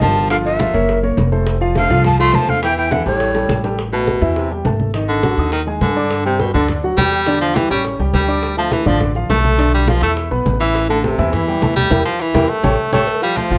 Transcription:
0.01 G1 F3 G3 G4 A#4 A5, high bongo, low bongo, high conga
0.16 high bongo
0.30 D3 F3 F4 F5, high bongo, high conga
0.45 A#2 E5, high conga
0.59 F3 F4 F5, high bongo, high conga
0.74 F#1 A#3 A#4 C#5, high bongo, high conga
0.89 high bongo, high conga
1.03 A#3 A#4 C#5, high bongo, high conga
1.17 F1, high bongo, low bongo, high conga
1.32 A3 A4 C5, high bongo, high conga
1.47 high bongo, high conga
1.61 F3 F4 F5, high conga
1.75 D3 A3 A4 C5 F5, high bongo, high conga
1.90 C2 F3 F4 F5, high bongo, high conga, low conga
2.04 F3 A5, high bongo, high conga, low conga
2.19 F3 A3 F4 F5 C6, high bongo, high conga
2.33 E2 F3 A3 A4 C5 A5, high bongo, low bongo, high conga
2.48 D3 F5, high bongo, high conga
2.62 E3 E4 E5 G5, high bongo, high conga
2.77 E3 G5, high conga
2.91 D3 E3 E4 E5 F#5, high bongo, high conga
3.06 A1 A2 G3 G4 A4 C#5, high bongo, high conga
3.20 high bongo, high conga
3.35 G3 G4 A4, high bongo, high conga
3.49 A1, high bongo, high conga
3.64 G3 G4 A4, low bongo, high conga
3.78 high bongo, high conga
3.93 B2 A3 A4 A5, high conga
4.07 high bongo, high conga
4.21 E2 E3 E4 E5, high bongo, high conga, low conga
4.36 C3, high bongo, high conga
4.51 G3 G4 G5, high bongo, high conga
4.65 G#1 A3 A4 A5, high bongo, low bongo, high conga
4.80 high bongo, high conga
4.94 D#3 D#4 D#5, high bongo, high conga
5.09 D3, high conga
5.23 F#3 F#4 F#5, high bongo, high conga
5.38 D#2 D#4 D#5 D#6, high bongo, high conga
5.52 D#3, high bongo, high conga
5.66 G#3 G#4 G#5, high bongo, high conga
5.81 G2 D3, high bongo, low bongo, high conga
5.96 D4 D5 D6, high bongo, high conga
6.11 high bongo, high conga
6.25 C3 G3 G4 G5, high conga
6.39 B2, high bongo, high conga
6.54 D2 D3 D4 D5, high bongo, high conga, low conga
6.68 high bongo, high conga, low conga
6.83 F#3 F#4 F#5, high bongo, high conga
6.97 E2 G3 G4 G5, high bongo, low bongo, high conga
7.12 high bongo
7.26 D3 D4 D5, high bongo, high conga
7.41 F3, high conga
7.56 E3 G3 G4 G5, high bongo, high conga
7.70 A1 G3 C#4 C#5 C#6, high bongo, high conga
7.85 high bongo, high conga
7.99 C#2 G3 G4 G5, high bongo, high conga
8.14 D2 G3, high bongo, low bongo, high conga
8.28 D4 D5 D6, high bongo, high conga
8.43 high bongo, high conga
8.57 F3 A3 A4 A5, high conga
8.72 E3, high bongo, high conga
8.86 A1 D3 F3 D4 D5, high bongo, high conga, low conga
9.00 high bongo, high conga, low conga
9.15 F3 F4 F5, high bongo, high conga
9.29 B1 A3 A4 A5, high bongo, low bongo, high conga
9.44 high bongo, high conga
9.58 D3 D4 D5, high bongo, high conga
9.73 G3, high conga
9.88 F3 F4 F5, high bongo, high conga
10.02 E2 A3 E4 E5 E6, high bongo, high conga
10.17 high bongo, high conga
10.31 B1 B3 B4 B5, high bongo, high conga
10.46 A1, high bongo, low bongo, high conga
10.60 E3 E4 E5 E6, high bongo, high conga
10.75 high bongo, high conga
10.89 D3 A3 A4 A5, high conga
11.04 C3, high bongo, high conga
11.18 E2 E3 E4 E5, high bongo, high conga, low conga
11.33 E3, high bongo, high conga, low conga
11.48 G3 G4 G5, high bongo, high conga
11.62 E2 A3 A4 A5, high bongo, low bongo, high conga
11.76 G3, high bongo, high conga
11.91 E2 E4 G4 A#4, low bongo, high conga
12.05 F3
12.21 E3
12.34 E2 E4 G4 A#4, low bongo, high conga
12.49 A3
12.63 A1 G4 A4 C#5, low bongo, high conga
12.93 A1 A3 G4 A4 C#5, low bongo, high conga
13.07 cowbell, high conga
13.22 F3 G3 F4 F5, cowbell, high conga
13.36 F3 A3 A4 C5, cowbell, high conga
13.51 A1 F3 F4 F5, high conga, low conga

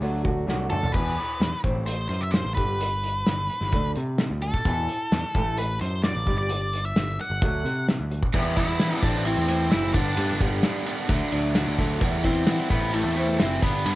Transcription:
0.00 D2 D3 F#3 A3 D4 F#4, open hi-hat
0.24 A3 D4 F#4, kick
0.47 C2 D3 F#3 A3 D4 F#4, snare
0.70 A3 D4 F#4 A4, mid tom
0.83 floor tom
0.92 E2 B2 E3 B4, kick, crash
1.17 E2 B2, closed hi-hat
1.40 E2 B2, snare, closed hi-hat
1.63 A1 A2 E3 C4, kick, closed hi-hat
1.86 A2 E3 C5, closed hi-hat
2.09 F#2 A2 E3 C5, closed hi-hat
2.21 E5
2.32 A2 E3 C5, snare, closed hi-hat
2.45 A1
2.54 G1 G2 D3 G3 B4, kick, closed hi-hat
2.79 G2 D3, closed hi-hat
3.03 G2 D3, closed hi-hat
3.26 G1 G2 D3, snare, closed hi-hat
3.49 G2 D3, closed hi-hat
3.61 G1, snare
3.72 D2 D3 A3 D4, kick, closed hi-hat
3.96 C3 D3 A3, closed hi-hat
4.18 D3 A3, snare, closed hi-hat
4.30 D2
4.42 D3 A3 A4, closed hi-hat
4.54 kick
4.65 E2 B2 E3, kick, closed hi-hat
4.89 E2 B2, closed hi-hat
5.12 E2 B2, snare, closed hi-hat
5.35 A1 A2 E3 A3, kick, closed hi-hat
5.57 A2 E3 B4, closed hi-hat
5.81 F#2 A2 E3 C5, closed hi-hat
6.03 A2 E3 D5, snare, closed hi-hat
6.15 A1
6.27 G1 G2 D3 G3, kick, closed hi-hat
6.38 D5
6.50 G2 D3, closed hi-hat
6.73 G2 D3, closed hi-hat
6.85 E5
6.96 G1 G2 D3, snare, closed hi-hat
7.19 G2 D3 F#5, closed hi-hat
7.30 G1
7.41 D2 D3 F#3 A3, kick, closed hi-hat
7.64 C3 D3 F#3, closed hi-hat
7.88 D3 F#3, snare, closed hi-hat
8.00 D2
8.10 D3 F#3, closed hi-hat
8.23 kick
8.34 E2 E3 G3 B3 E4, kick, crash
8.57 G3 B3 E4 E5, kick, ride
8.79 E3 G3 B3 E4, snare, ride
9.03 A1 A2 E3 A3 C4 D4 E4 D5, kick, ride
9.24 E3 A3 C4 E4 C5, ride
9.37 E2
9.48 A2 E3 A3 C4 E4, ride
9.70 F#1 E3 A3 C4 E4 E5, snare, ride
9.93 G1 G2 D3 G3 B3 D4 D5, kick, ride
10.16 G2 D3 G3 B3 D4, ride
10.30 G1
10.38 G1 G3 B3 D4 G4, kick, ride
10.43 G3 B3
10.61 G2 D3 G3 B3 D4, snare, ride
10.86 G2 D3 G3 B3 D4, ride
10.91 G3
11.08 D2 D3 F#3 A3 D4, kick, ride
11.32 D2 D3 F#3 A3 D4, ride
11.55 D3 F#3 A3 D4, snare, ride
11.68 D2
11.78 F#3 A3 D4, kick, ride
12.01 E2 E3 G3 B3 E4, kick, ride
12.23 B3 C4 E4 C5, kick, ride
12.28 G3
12.47 E3 G3 B3, snare, ride
12.51 E4
12.70 A1 A2 E3 A3 B3 C4 E4 B4, kick, ride
12.93 E3 A3 C4 E4 A4, ride
13.05 E2
13.15 A2 E3 A3 C4 E4, ride
13.39 F#1 E3 A3 C4 E4 C5, snare, ride
13.62 G1 G2 D3 G3 B3 D4 B4, kick, ride
13.84 G2 D3 G3 B3 D4, ride

